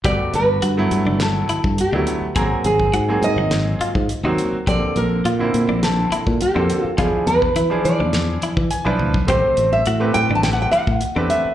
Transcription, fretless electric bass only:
0.04 G1
0.34 G1
0.63 G2
0.91 G2
1.06 G1
1.49 muted fretless electric bass stroke
1.64 G2
1.92 D2
2.21 muted fretless electric bass stroke
2.36 G#1
2.65 G#1
2.93 G#2
3.22 G#2
3.36 G#1
3.80 muted fretless electric bass stroke
3.95 G#2
4.23 D#2
4.53 muted fretless electric bass stroke
4.67 A#1
4.96 A#1
5.25 A#2
5.54 A#2
5.68 A#1
6.11 muted fretless electric bass stroke
6.27 A#2
6.56 F2
6.85 muted fretless electric bass stroke
6.98 E2
7.27 E2
7.56 E3
7.85 E3
8.00 E2
8.43 muted fretless electric bass stroke
8.57 E3
8.86 B1
9.00 D2
9.14 B1
9.29 A1
9.58 A1
9.87 A2
10.15 A2
10.29 A1
10.72 muted fretless electric bass stroke
10.87 A2
11.16 E2
11.45 muted fretless electric bass stroke

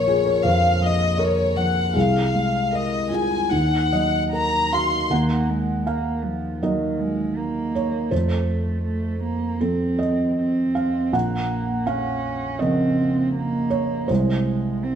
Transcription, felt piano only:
Already playing: A#1 F3 A#4 C#5
0.07 F4 G#4
0.25 A#4
0.44 F2 C5
0.82 F3
1.18 A#4 C#5
1.57 F3
1.94 C2 G#4
2.35 G#3
2.72 A#4
3.10 F4 G#4
3.51 D#2 D#4
3.93 F#3 D#5
4.33 A#4
4.73 F#4 F5
5.10 D#2 F#5
5.87 F5
6.62 F#3 D#4 A#4 D#5
7.75 C#5
8.11 F2 C5
9.61 F3 C4 A4
9.99 D#5
10.75 F5
11.12 A#1 F#5
11.87 F5
12.59 C#3 F3 A#4 D#5
13.70 C#5
14.08 C2 C5

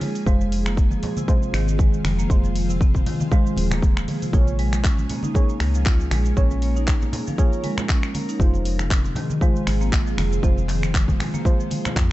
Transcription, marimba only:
0.01 G#3
0.27 G#3
0.52 F3
0.66 A#3
0.92 F3
1.17 C3
1.29 C4
1.54 D#3
1.79 G#3
2.05 F3
2.19 A#3
2.45 F3
2.70 C3
2.82 C4
3.07 D#3
3.32 G#3
3.57 F3
3.71 A#3
3.97 F3
4.22 C3
4.33 F4
4.59 G#3
4.84 C#4
5.10 A#3
5.24 D#4
5.50 A#3
5.75 F3
5.86 F4
6.12 G#3
6.37 C#4
6.63 A#3
6.77 D#4
7.02 A#3
7.27 F3
7.39 F4
7.64 G#3
7.90 C#4
8.15 A#3
8.29 D#4
8.54 F3
8.80 C3
8.91 C4
9.16 D#3
9.42 G#3
9.67 F3
9.81 A#3
10.07 F3
10.32 C3
10.44 C4
10.69 D#3
10.95 G#3
11.20 F3
11.34 A#3
11.60 F3
11.85 F4
11.96 C4

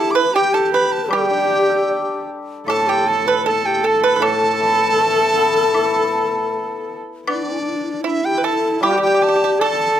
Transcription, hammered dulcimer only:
Already playing: D3 E4 A4
1.08 G3
1.30 D4
1.50 G4
1.69 A4
1.89 D5
2.66 A2
4.20 A2
4.60 E3
4.98 A3
5.36 B3
5.75 E4
8.80 G3

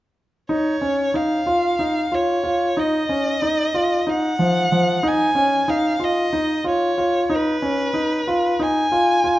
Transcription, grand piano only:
0.49 D#4
0.81 C#4
1.14 D#4
1.46 F4
1.79 D#4
2.12 F4
2.44 F4
2.77 D#4
3.09 C#4
3.42 D#4
3.74 F4
4.07 D#4
4.39 F3
4.72 F3
5.03 D#4
5.35 C#4
5.68 D#4
6.00 F4
6.33 D#4
6.64 F4
6.98 F4
7.30 D#4
7.62 C#4
7.94 D#4
8.27 F4
8.59 D#4
8.92 F4
9.24 F4

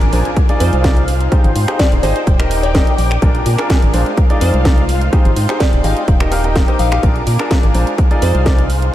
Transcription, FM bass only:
0.01 G#1
0.13 A#1
0.60 F2
0.73 C2
1.44 G#1
1.56 G#2
1.92 D#1
2.03 G#1
2.27 D#1
2.98 A#1
3.22 A#1
3.46 A#2
3.82 G#1
3.94 A#1
4.41 F2
4.54 C2
5.25 G#1
5.37 G#2
5.73 D#1
5.84 G#1
6.08 D#1
6.79 A#1
7.03 A#1
7.27 A#2
7.63 G#1
7.74 A#1
8.22 F2
8.35 C2

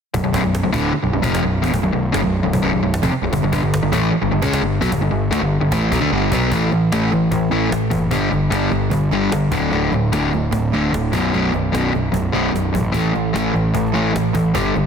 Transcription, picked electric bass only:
0.14 B0
0.23 B0
0.34 B0
0.44 B0
0.64 B0
0.74 D1
0.94 muted picked electric bass stroke
1.04 B0
1.13 B0
1.24 F1
1.42 B0
1.63 E1
1.73 B0
1.83 B0
1.93 B0
2.14 F#1
2.24 B0
2.44 B0
2.53 B0
2.63 B0
2.73 B0
2.83 B0
3.03 F1
3.13 muted picked electric bass stroke
3.22 B0
3.33 G1
3.43 G1
3.53 G1
3.63 G1
3.82 G1
3.93 A1
4.12 muted picked electric bass stroke
4.22 G1
4.33 G1
4.43 C#2
4.61 G1
4.82 B1
4.92 G1
5.01 G1
5.12 G1
5.31 D2
5.41 G1
5.61 G1
5.72 A1
5.91 B1
6.01 D2
6.11 G1
6.31 B1
6.52 A1
6.73 A1
6.92 A1
7.12 A1
7.31 A1
7.51 A1
7.71 A1
7.91 F#1
8.11 G1
8.31 G1
8.51 G1
8.71 G1
8.91 G1
9.11 G1
9.30 G1
9.51 D1
9.72 D1
9.91 D1
10.12 D1
10.33 D1
10.52 D1
10.73 D1
10.92 D1
11.13 B0
11.34 B0
11.53 B0
11.74 B0
11.93 B0
12.14 B0
12.34 B0
12.54 B0
12.74 A1
12.94 A1
13.15 A1
13.35 A1
13.55 A1
13.75 A1
13.95 A1
14.15 A1
14.34 A1
14.55 G1
14.75 G1

